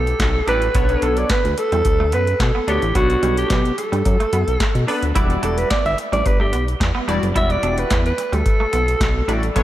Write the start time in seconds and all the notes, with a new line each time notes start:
Already playing: B1 A4
0.07 closed hi-hat
0.20 B1, kick, snare, clap, closed hi-hat
0.47 A1 G3 D4 E4 F#4 B4 D5, closed hi-hat
0.62 closed hi-hat
0.75 B1 B3 D4 A4 C#5, kick, closed hi-hat
0.89 muted clean electric guitar stroke, closed hi-hat
1.02 B1 D4 A4, closed hi-hat
1.17 D5, closed hi-hat
1.29 B3 B4, kick, snare, clap, closed hi-hat
1.45 D2, closed hi-hat
1.58 A4, muted clean electric guitar stroke, closed hi-hat
1.72 E2 G3, closed hi-hat
1.85 D2, muted clean electric guitar stroke, kick, closed hi-hat
2.00 A3
2.12 F#2 B3 B4, closed hi-hat
2.27 closed hi-hat
2.40 B2 A4, muted clean electric guitar stroke, kick, snare, clap, closed hi-hat
2.55 B3
2.67 D2 B3 D4 G4 A4 C#5, closed hi-hat
2.82 A1, closed hi-hat
2.95 B1 B3 D4 F#4 A4 C#5, kick, closed hi-hat
3.10 muted clean electric guitar stroke, closed hi-hat
3.23 B1 G3, closed hi-hat
3.37 G4, closed hi-hat
3.50 B2 F#3, kick, snare, clap, closed hi-hat
3.65 closed hi-hat
3.78 A4, muted clean electric guitar stroke, closed hi-hat
3.92 G2 G3, closed hi-hat
4.05 F#2, muted clean electric guitar stroke, kick, closed hi-hat
4.20 A3, closed hi-hat
4.33 F#2 B3, closed hi-hat
4.48 B1, closed hi-hat
4.60 kick, snare, clap, closed hi-hat
4.75 B2, closed hi-hat
4.87 B3 D4 A4 B4, open hi-hat
5.02 D2, closed hi-hat
5.15 E1 G3 E4 F#4 D5, kick, closed hi-hat
5.30 muted clean electric guitar stroke, closed hi-hat
5.43 E1 D4 A4, closed hi-hat
5.58 B4, closed hi-hat
5.70 B3 D5, kick, snare, clap, closed hi-hat
5.85 G1 E5, closed hi-hat
5.98 muted clean electric guitar stroke, closed hi-hat
6.12 A1 G3 D5, closed hi-hat
6.25 G1 B4, muted clean electric guitar stroke, kick, closed hi-hat
6.40 A3 G4
6.53 B1 B3, closed hi-hat
6.68 closed hi-hat
6.80 E2, muted clean electric guitar stroke, kick, snare, clap, closed hi-hat
6.95 B3
7.08 E1 G3 D4 E4 F#4 D5, closed hi-hat
7.23 F#1, closed hi-hat
7.35 E1 G3 E4 F#4 D5 E5, kick, closed hi-hat
7.50 D5, muted clean electric guitar stroke, closed hi-hat
7.63 E1 D4, closed hi-hat
7.78 B4, closed hi-hat
7.90 E2 B3, kick, snare, clap, closed hi-hat
8.06 B4, closed hi-hat
8.18 muted clean electric guitar stroke, closed hi-hat
8.32 D2 G3 A4, closed hi-hat
8.46 muted clean electric guitar stroke, kick, closed hi-hat
8.60 A3
8.73 B1 B3, closed hi-hat
8.88 closed hi-hat
9.01 B1, kick, snare, clap, closed hi-hat
9.28 A1 G3 D4 E4 F#4 D5, closed hi-hat
9.43 closed hi-hat
9.55 B1 B3 D4 A4 C#5, kick, closed hi-hat